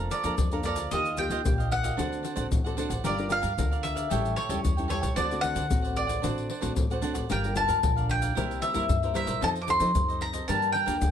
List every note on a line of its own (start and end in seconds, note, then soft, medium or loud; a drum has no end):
0.00 0.36 F3 soft
0.00 0.10 A#3 soft
0.00 0.11 D4 soft
0.00 0.11 A4 medium
0.00 0.10 D5 medium
0.00 0.11 F5 medium
0.00 0.14 F5 medium
0.00 0.11 A#5 medium
0.11 0.22 A4 soft
0.11 0.23 D5 soft
0.11 0.64 D5 medium
0.11 0.24 F5 soft
0.11 0.24 A#5 soft
0.11 pandeiro medium
0.11 shaker medium
0.24 0.36 F2 medium
0.24 0.47 A#3 medium
0.24 0.47 D4 medium
0.24 0.34 A4 medium
0.24 0.47 A4 medium
0.24 0.34 D5 medium
0.24 0.34 F5 medium
0.24 0.34 A#5 medium
0.24 pandeiro medium
0.24 shaker medium
0.24 surdo soft
0.38 0.77 F2 medium
0.38 0.89 F3 soft
0.38 pandeiro medium
0.38 shaker medium
0.38 surdo medium
0.51 0.61 A#3 medium
0.51 0.61 D4 medium
0.51 0.62 A4 medium
0.51 0.65 D5 soft
0.51 0.65 F5 soft
0.51 0.65 A#5 soft
0.51 pandeiro soft
0.51 shaker soft
0.63 0.82 A#3 soft
0.63 0.82 D4 soft
0.63 0.77 A4 medium
0.63 0.82 A4 medium
0.63 0.91 D5 medium
0.63 0.78 D5 medium
0.63 0.78 F5 medium
0.63 pandeiro medium
0.63 shaker medium
0.68 0.76 A#5 medium
0.76 0.89 D2 medium
0.76 0.91 D5 soft
0.76 0.91 F5 soft
0.76 0.90 A#5 soft
0.76 pandeiro medium
0.76 shaker medium
0.76 surdo soft
0.91 1.26 D#2 medium
0.91 1.43 D#3 soft
0.91 1.08 A#3 medium
0.91 1.16 F4 medium
0.91 1.08 F4 soft
0.91 1.08 G4 medium
0.91 1.17 G4 medium
0.91 1.16 D#5 medium
0.91 1.18 D#5 medium
0.91 1.19 F5 medium
0.91 pandeiro medium
0.91 shaker medium
0.91 surdo soft
1.05 pandeiro soft
1.05 shaker soft
1.17 1.27 A#3 medium
1.17 1.29 F4 soft
1.17 1.27 F4 soft
1.17 1.30 G4 soft
1.17 1.27 G4 medium
1.17 1.30 D#5 soft
1.17 1.31 F5 soft
1.17 1.68 G5 loud
1.17 pandeiro medium
1.17 shaker medium
1.17 surdo soft
1.29 1.42 D#3 medium
1.29 1.40 A#3 medium
1.29 1.40 F4 medium
1.29 1.41 F4 medium
1.29 1.40 G4 medium
1.29 1.41 G4 medium
1.29 1.41 D#5 medium
1.29 1.41 F5 medium
1.29 pandeiro medium
1.29 shaker medium
1.29 surdo soft
1.45 1.90 A#1 medium
1.45 1.96 A#2 medium
1.45 1.94 A#3 soft
1.45 1.95 F4 soft
1.45 1.95 G4 medium
1.45 pandeiro medium
1.45 shaker medium
1.45 surdo loud
1.58 1.84 G4 soft
1.58 1.83 D#5 soft
1.58 1.82 F5 soft
1.58 pandeiro soft
1.58 shaker soft
1.71 2.74 F#5 medium
1.71 pandeiro medium
1.83 1.97 G4 soft
1.83 1.97 D#5 soft
1.83 1.96 F5 soft
1.83 pandeiro medium
1.83 shaker medium
1.83 surdo soft
1.97 2.21 D2 medium
1.97 2.49 D3 soft
1.97 2.34 C4 soft
1.97 2.22 D4 medium
1.97 2.35 F#4 medium
1.97 2.35 A4 medium
1.97 2.23 C5 medium
1.97 2.23 D5 medium
1.97 2.24 F#5 medium
1.97 pandeiro medium
1.97 shaker medium
1.97 surdo medium
2.13 pandeiro soft
2.13 shaker soft
2.23 2.34 D4 soft
2.23 2.35 C5 soft
2.23 2.34 D5 soft
2.23 2.36 F#5 medium
2.23 pandeiro medium
2.23 shaker medium
2.36 2.49 A1 medium
2.36 2.60 C4 medium
2.36 2.46 D4 medium
2.36 2.60 F#4 medium
2.36 2.60 A4 medium
2.36 2.46 C5 medium
2.36 2.46 D5 medium
2.36 2.47 F#5 medium
2.36 pandeiro medium
2.36 shaker medium
2.36 surdo soft
2.51 2.74 A1 medium
2.51 3.02 A2 soft
2.51 pandeiro medium
2.51 shaker medium
2.51 surdo medium
2.64 2.74 C4 medium
2.64 2.75 F#4 medium
2.64 2.75 A4 medium
2.64 2.77 C5 soft
2.64 2.78 D5 soft
2.64 2.77 F#5 soft
2.64 pandeiro soft
2.64 shaker soft
2.77 2.96 C4 soft
2.77 2.90 D4 medium
2.77 2.96 F#4 soft
2.77 2.96 A4 medium
2.77 2.90 C5 medium
2.77 2.90 D5 medium
2.77 2.89 F#5 medium
2.77 pandeiro medium
2.77 shaker medium
2.90 3.02 A1 medium
2.90 3.04 C5 soft
2.90 3.04 D5 soft
2.90 3.03 F#5 soft
2.90 pandeiro medium
2.90 shaker medium
2.90 surdo soft
3.04 3.38 G1 medium
3.04 3.56 G3 medium
3.04 3.13 D4 soft
3.04 3.13 F4 soft
3.04 3.28 G4 medium
3.04 3.29 A#4 medium
3.04 3.14 A#4 medium
3.04 3.30 D5 medium
3.04 3.30 F5 medium
3.04 pandeiro medium
3.04 shaker medium
3.04 surdo medium
3.18 3.27 D4 medium
3.18 3.28 F4 medium
3.18 3.28 A#4 medium
3.18 pandeiro soft
3.18 shaker soft
3.29 3.47 D4 medium
3.29 3.47 F4 medium
3.29 3.40 G4 soft
3.29 3.41 A#4 soft
3.29 3.47 A#4 medium
3.29 3.41 D5 medium
3.29 3.41 F5 medium
3.29 3.86 F5 medium
3.29 pandeiro medium
3.29 shaker medium
3.41 3.55 G2 medium
3.41 3.52 G4 medium
3.41 3.52 A#4 medium
3.41 3.52 D5 medium
3.41 3.53 F5 medium
3.41 pandeiro medium
3.41 shaker medium
3.41 surdo soft
3.57 4.03 D2 medium
3.57 4.09 D3 soft
3.57 4.07 D4 soft
3.57 4.07 F4 soft
3.57 4.07 A#4 medium
3.57 pandeiro medium
3.57 shaker medium
3.57 surdo medium
3.71 3.96 A#4 soft
3.71 3.95 D5 soft
3.71 3.94 F5 soft
3.71 pandeiro soft
3.71 shaker soft
3.83 4.36 E5 medium
3.83 pandeiro medium
3.83 shaker medium
3.95 4.10 A#4 soft
3.95 4.09 D5 soft
3.95 4.09 F5 soft
3.95 pandeiro medium
3.95 shaker medium
3.95 surdo soft
4.10 4.34 A1 medium
4.10 4.62 A2 soft
4.10 4.36 G3 soft
4.10 4.37 C#4 medium
4.10 4.37 E4 soft
4.10 4.35 G4 medium
4.10 4.36 A4 medium
4.10 4.36 C#5 medium
4.10 4.37 G5 medium
4.10 pandeiro medium
4.10 shaker medium
4.10 surdo medium
4.25 pandeiro soft
4.25 shaker soft
4.36 4.48 G4 soft
4.36 4.48 A4 soft
4.36 4.86 C#5 medium
4.36 4.48 C#5 soft
4.36 4.49 G5 medium
4.36 pandeiro medium
4.49 4.61 E2 medium
4.49 4.73 G3 medium
4.49 4.73 C#4 medium
4.49 4.73 E4 medium
4.49 4.59 G4 medium
4.49 4.59 A4 medium
4.49 4.59 C#5 medium
4.49 4.60 G5 medium
4.49 pandeiro medium
4.49 shaker medium
4.49 surdo soft
4.63 5.04 E2 medium
4.63 5.14 E3 soft
4.63 pandeiro medium
4.63 shaker medium
4.63 surdo medium
4.77 4.87 G3 medium
4.77 4.87 C#4 medium
4.77 4.87 E4 medium
4.77 4.88 A4 soft
4.77 4.88 C#5 soft
4.77 4.89 G5 soft
4.77 pandeiro soft
4.77 shaker soft
4.88 5.08 G3 soft
4.88 5.08 C#4 medium
4.88 5.02 G4 medium
4.88 5.02 A4 medium
4.88 5.01 C#5 medium
4.88 5.15 C#5 medium
4.88 5.00 G5 medium
4.88 pandeiro medium
4.88 shaker medium
4.92 5.08 E4 medium
5.01 5.14 C#2 medium
5.01 5.16 A4 soft
5.01 5.16 C#5 soft
5.01 5.15 G5 soft
5.01 pandeiro medium
5.01 shaker medium
5.01 surdo soft
5.16 5.51 D2 medium
5.16 5.68 D3 soft
5.16 5.27 A3 soft
5.16 5.27 C4 soft
5.16 5.40 D4 medium
5.16 5.27 F#4 medium
5.16 5.41 C5 medium
5.16 5.44 D5 medium
5.16 5.41 D5 medium
5.16 5.42 F#5 medium
5.16 pandeiro medium
5.16 shaker medium
5.16 surdo medium
5.31 5.40 A3 medium
5.31 5.40 C4 medium
5.31 5.40 F#4 medium
5.31 pandeiro soft
5.31 shaker soft
5.41 5.59 A3 soft
5.41 5.59 C4 medium
5.41 5.53 D4 soft
5.41 5.59 F#4 medium
5.41 5.54 C5 soft
5.41 5.55 D5 soft
5.41 5.97 F#5 loud
5.41 5.55 F#5 soft
5.41 pandeiro medium
5.41 shaker medium
5.41 surdo soft
5.55 5.68 D3 medium
5.55 5.65 D4 medium
5.55 5.66 C5 medium
5.55 5.66 D5 medium
5.55 5.66 F#5 medium
5.55 pandeiro medium
5.55 shaker medium
5.55 surdo soft
5.70 6.15 A1 medium
5.70 6.21 A2 soft
5.70 6.05 A3 soft
5.70 6.05 C4 medium
5.70 6.05 F#4 medium
5.70 pandeiro medium
5.70 shaker medium
5.70 surdo medium
5.82 6.08 C5 soft
5.82 6.07 D5 soft
5.82 6.06 F#5 soft
5.82 pandeiro soft
5.82 shaker soft
5.96 6.99 D5 medium
5.96 pandeiro medium
6.07 6.22 C5 soft
6.07 6.22 D5 soft
6.07 6.21 F#5 soft
6.07 pandeiro medium
6.07 shaker medium
6.07 surdo soft
6.22 6.46 A1 medium
6.22 6.74 D3 medium
6.22 6.48 A3 medium
6.22 6.49 C4 soft
6.22 6.48 D4 medium
6.22 6.49 F#4 medium
6.22 6.49 C5 medium
6.22 6.49 D5 medium
6.22 6.49 F#5 medium
6.22 pandeiro medium
6.22 shaker medium
6.22 surdo medium
6.38 pandeiro soft
6.38 shaker soft
6.50 6.60 D4 soft
6.50 6.60 C5 soft
6.50 6.60 D5 medium
6.50 6.61 F#5 medium
6.50 pandeiro medium
6.61 6.74 A1 medium
6.61 6.85 A3 medium
6.61 6.85 C4 medium
6.61 6.71 D4 medium
6.61 6.85 F#4 medium
6.61 6.72 C5 medium
6.61 6.72 D5 medium
6.61 6.72 F#5 medium
6.61 pandeiro medium
6.61 shaker medium
6.61 surdo soft
6.76 7.00 A1 medium
6.76 7.27 A2 soft
6.76 pandeiro medium
6.76 shaker medium
6.76 surdo medium
6.90 6.99 A3 medium
6.90 6.99 C4 medium
6.90 7.00 F#4 medium
6.90 7.02 C5 soft
6.90 7.02 D5 soft
6.90 7.03 F#5 soft
6.90 pandeiro soft
6.90 shaker soft
7.02 7.27 A3 soft
7.02 7.28 C4 soft
7.02 7.15 D4 medium
7.02 7.28 F#4 soft
7.02 7.15 C5 medium
7.02 7.14 D5 medium
7.02 7.13 F#5 medium
7.02 pandeiro medium
7.02 shaker medium
7.14 7.28 A1 medium
7.14 7.29 C5 soft
7.14 7.28 D5 soft
7.14 7.28 F#5 soft
7.14 pandeiro medium
7.14 shaker medium
7.14 surdo soft
7.30 7.64 G1 medium
7.30 7.80 G3 soft
7.30 7.38 D4 soft
7.30 7.38 F4 soft
7.30 7.53 G4 medium
7.30 7.54 A#4 medium
7.30 7.38 A#4 medium
7.30 7.55 D5 medium
7.30 7.56 F5 medium
7.30 7.56 G5 medium
7.30 pandeiro medium
7.30 shaker medium
7.30 surdo medium
7.44 7.53 D4 medium
7.44 7.53 F4 medium
7.44 7.53 A#4 medium
7.44 pandeiro soft
7.44 shaker soft
7.55 7.64 D4 medium
7.55 7.64 F4 medium
7.55 7.66 G4 soft
7.55 7.66 A#4 soft
7.55 7.64 A#4 medium
7.55 7.67 D5 soft
7.55 7.67 F5 medium
7.55 8.06 A5 medium
7.55 pandeiro medium
7.55 shaker medium
7.55 surdo soft
7.67 7.81 G2 medium
7.67 7.78 D4 medium
7.67 7.78 F4 medium
7.67 7.78 G4 medium
7.67 7.78 A#4 medium
7.67 7.78 D5 medium
7.67 7.78 F5 medium
7.67 pandeiro medium
7.67 shaker medium
7.67 surdo soft
7.82 8.29 A#1 medium
7.82 8.33 D3 medium
7.82 8.32 D4 soft
7.82 8.32 F4 soft
7.82 8.32 A#4 medium
7.82 pandeiro medium
7.82 shaker medium
7.82 surdo loud
7.96 8.22 A#4 soft
7.96 8.21 D5 soft
7.96 8.20 F5 soft
7.96 pandeiro soft
7.96 shaker soft
8.09 8.60 G5 medium
8.09 pandeiro medium
8.21 8.35 A#4 soft
8.21 8.35 D5 soft
8.21 8.34 F5 soft
8.21 pandeiro medium
8.21 shaker medium
8.21 surdo soft
8.35 8.59 C2 medium
8.35 8.87 C3 soft
8.35 8.72 G3 soft
8.35 8.72 A#3 medium
8.35 8.60 E4 medium
8.35 8.72 E4 medium
8.35 8.61 A#4 medium
8.35 8.61 C5 medium
8.35 8.62 E5 medium
8.35 pandeiro medium
8.35 shaker medium
8.35 surdo medium
8.51 pandeiro soft
8.51 shaker soft
8.61 8.74 E4 soft
8.61 8.74 A#4 soft
8.61 8.74 C5 medium
8.61 9.15 E5 medium
8.61 8.75 E5 soft
8.61 pandeiro medium
8.61 shaker medium
8.73 8.87 G2 medium
8.73 8.97 G3 medium
8.73 8.97 A#3 medium
8.73 8.97 E4 medium
8.73 8.85 E4 medium
8.73 8.85 A#4 medium
8.73 8.85 C5 medium
8.73 8.85 E5 medium
8.73 pandeiro medium
8.73 shaker medium
8.73 surdo soft
8.88 9.39 G2 soft
8.88 9.28 G2 medium
8.88 pandeiro medium
8.88 shaker medium
8.88 surdo medium
9.02 9.11 G3 medium
9.02 9.12 A#3 medium
9.02 9.12 E4 medium
9.02 9.13 A#4 soft
9.02 9.14 C5 soft
9.02 9.15 E5 soft
9.02 pandeiro soft
9.02 shaker soft
9.14 9.39 G3 medium
9.14 9.40 A#3 medium
9.14 9.27 E4 medium
9.14 9.40 E4 medium
9.14 9.27 A#4 medium
9.14 9.27 C5 medium
9.14 9.26 E5 medium
9.14 9.41 E5 medium
9.14 pandeiro medium
9.14 shaker medium
9.27 9.39 C2 medium
9.27 9.41 A#4 soft
9.27 9.41 C5 soft
9.27 9.40 E5 soft
9.27 pandeiro medium
9.27 shaker medium
9.27 surdo soft
9.41 9.76 F2 medium
9.41 9.92 F3 medium
9.41 9.58 C4 soft
9.41 9.58 D#4 soft
9.41 9.65 F4 medium
9.41 9.66 A4 medium
9.41 9.58 A4 medium
9.41 9.67 C5 medium
9.41 9.67 D#5 medium
9.41 9.49 A5 loud
9.41 pandeiro medium
9.41 shaker medium
9.41 surdo medium
9.56 pandeiro soft
9.56 shaker soft
9.62 9.69 D6 medium
9.66 9.77 C4 medium
9.66 9.78 D#4 medium
9.66 9.78 F4 soft
9.66 9.78 A4 soft
9.66 9.78 A4 medium
9.66 9.79 C5 soft
9.66 9.79 D#5 medium
9.66 10.19 C6 loud
9.66 pandeiro medium
9.66 shaker medium
9.66 surdo soft
9.79 9.92 F3 medium
9.79 9.90 C4 medium
9.79 9.91 D#4 medium
9.79 9.90 F4 medium
9.79 9.90 A4 medium
9.79 9.91 A4 medium
9.79 9.90 C5 medium
9.79 9.90 D#5 medium
9.79 pandeiro medium
9.79 shaker medium
9.79 surdo soft
9.95 10.40 F#2 medium
9.95 10.46 C3 soft
9.95 10.30 C4 medium
9.95 10.30 D#4 medium
9.95 10.30 A4 medium
9.95 pandeiro medium
9.95 shaker medium
9.95 surdo medium
10.08 10.34 A4 soft
10.08 10.33 C5 soft
10.08 10.32 D#5 soft
10.08 pandeiro soft
10.08 shaker soft
10.21 10.47 A#5 medium
10.21 pandeiro medium
10.33 10.47 A4 soft
10.33 10.47 C5 soft
10.33 10.46 D#5 medium
10.33 pandeiro medium
10.33 shaker medium
10.33 surdo soft
10.48 10.99 G2 medium
10.48 10.71 G2 medium
10.48 10.73 G3 medium
10.48 10.73 A#3 medium
10.48 10.73 D4 medium
10.48 10.74 D4 medium
10.48 10.73 A#4 medium
10.48 10.73 D5 medium
10.48 10.74 G5 medium
10.48 10.72 A5 medium
10.48 pandeiro medium
10.48 shaker medium
10.48 surdo medium
10.62 pandeiro soft
10.62 shaker soft
10.72 10.85 D4 soft
10.72 10.85 A#4 medium
10.72 10.86 D5 medium
10.72 11.11 G5 medium
10.72 10.86 G5 medium
10.72 pandeiro soft
10.86 10.99 D2 medium
10.86 11.11 G3 medium
10.86 11.11 A#3 medium
10.86 10.96 D4 medium
10.86 11.11 D4 medium
10.86 10.96 A#4 medium
10.86 10.96 D5 medium
10.86 10.97 G5 medium
10.86 pandeiro medium
10.86 shaker medium
10.86 surdo soft
11.01 11.11 D2 medium
11.01 11.11 D3 medium
11.01 pandeiro medium
11.01 shaker medium
11.01 surdo medium